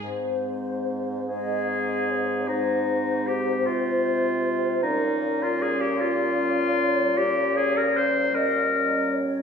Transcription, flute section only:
\new Staff \with { instrumentName = "Flute section" } { \time 12/8 \key aes \major \tempo 4. = 51 c''4. ees''8 ees''8 des''8 c''2. | bes'4. des''2. ees''8 ees''8 des''8 | }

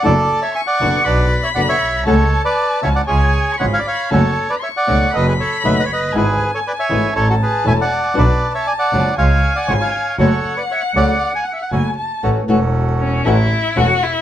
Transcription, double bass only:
\new Staff \with { instrumentName = "Double bass" } { \clef bass \time 4/4 \key fis \minor \tempo 4 = 118 fis,,8 r4 fis,,8 b,,8 r8 fis,,8 b,,8 | cis,8 r4 cis,8 cis,8 r8 gis,,8 r8 | fis,,8 r4 cis,8 fis,,8 r8 fis,,8 fis,,8 | gis,,8 r4 gis,,8 a,,8 r8 e,,8 r8 |
b,,8 r4 fis,,8 cis,8 r8 gis,,8 r8 | fis,,8 r4 cis,8 r4 fis,,8 r8 | \key a \major a,,8 e,,4. a,,8 r8 e,,8 r8 | }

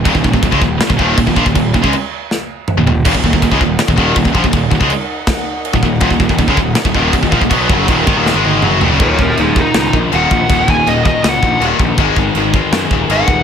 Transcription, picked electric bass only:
\new Staff \with { instrumentName = "Picked electric bass" } { \clef bass \time 4/4 \key ees \minor \tempo 4 = 161 ees,,16 ees,,16 ees,,16 ees,,16 ees,,16 des,16 ees,,8 r16 ees,,16 ees,,8 ees,,16 ees,,16 bes,,16 ees,,16 | ees,,8 ees,,16 des,16 r2 r16 ees,,16 ees,,8 | ees,,16 ees,,16 ees,,16 ees,,16 ees,,16 des,16 ees,,8 r16 ees,,16 ees,,8 ees,,16 ees,,16 bes,,16 ees,,16 | ees,,8 ees,,16 des,16 r2 r16 ees,,16 ees,,8 |
ees,,16 ees,,16 ees,,16 ees,,16 ees,,16 des,16 ees,,8 r16 ees,,16 ees,,8 ees,,16 ees,,16 bes,,16 ees,,16 | ces,8 ges,,8 ees,,8 aes,,16 ees,,8 aes,,8. ges,,8 ees,,16 ges,,16 | ees,,8 ees,,8 ees,,4 des,8 bes,,8 ees,,8 bes,,8 | ees,,8 ees,,8 ees,,4 des,8 bes,,8 ees,,8 bes,,8 |
aes,,8 aes,,8 aes,,4 ges,8 ees,,8 aes,,8 ees,,8 | }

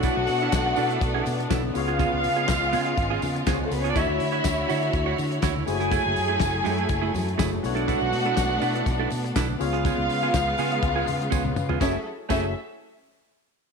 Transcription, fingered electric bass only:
\new Staff \with { instrumentName = "Fingered electric bass" } { \clef bass \time 4/4 \key fis \minor \tempo 4 = 122 r16 b,,16 b,8 b,,8 b,8 b,,8 b,8 b,,8 cis,8~ | cis,16 cis,16 cis8 cis,8 cis8 gis,,8 cis8 cis,8 cis,8 | d,16 d,16 d8 d,8 d8 d,8 d8 d,8 fis,,8~ | fis,,16 fis,,16 fis,8 fis,,8 fis,8 fis,,8 fis,8 fis,,8 b,,8~ |
b,,16 b,,16 b,8 b,,8 b,8 b,,8 b,8 b,,8 cis,8~ | cis,16 cis,16 cis8 cis,8 cis8 cis,8 cis8 cis,8 cis8 | fis,,16 r8. fis,,8 r2 r8 | }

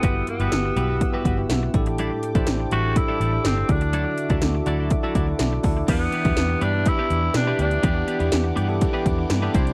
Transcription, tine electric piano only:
<<
  \new Staff \with { instrumentName = "Tine electric piano" } { \time 4/4 \key e \minor \tempo 4 = 123 << { r2. e''8 a''8 | r1 | r2 r8 a''8 e''4 | r1 |
r1 | } \\ { <b e' fis' g'>8 r16 <b e' fis' g'>8 r16 <b e' fis' g'>8 r16 <b e' fis' g'>16 r16 <b e' fis' g'>8 r16 <d' e' g' a'>8~ | <d' e' g' a'>8 r16 <d' e' g' c''>8 r16 <d' e' g' a'>8 r16 <d' e' g' a'>16 r16 <d' e' g' a'>8 r16 <d' e' fis' gis' a'>8~ | <d' e' fis' gis' a'>8 r16 <d' e' fis' a'>8 r16 <d' e' fis' a'>8 r16 <d' e' fis' a'>16 r16 <d' e' fis' a'>8 r16 <d' e' fis' a'>16 r16 | <d' e' g' b'>8 r16 <d' e' g' b'>8. r16 <d' e' g' b'>16 r16 <d' e' g' b'>8. r16 <d' e' g' b'>8 r16 |
<d' e' g' d''>8 r16 <d' e' g' b'>8. r16 <d' e' g' a'>16 r16 <d' e' g' b'>8. r16 <d' e' g' a'>16 <d' e' g' c''>8 | } >> }
  \new Staff \with { instrumentName = "Tine electric piano" } { \clef bass \time 4/4 \key e \minor g,4. r2 a,8~ | a,4 r2 r8 d8~ | d4 r2. | e4. r2 r8 |
e4. r2 c8 | }
>>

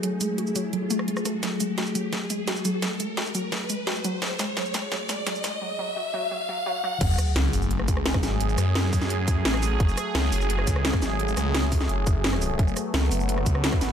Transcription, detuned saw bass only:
\new Staff \with { instrumentName = "Detuned saw bass" } { \clef bass \time 4/4 \key fis \minor \tempo 4 = 172 r1 | r1 | r1 | r1 |
r1 | fis,,8 r8 cis,8 fis,,4 cis,4 gis,,8~ | gis,,8 fis,2~ fis,8 a,,4 | fis,,8 r8 cis,8 fis,,4 cis,4 gis,,8~ |
gis,,8 cis,4. fis,,2 | fis,,8 r8 cis,8 fis,,4 cis,4 gis,,8 | }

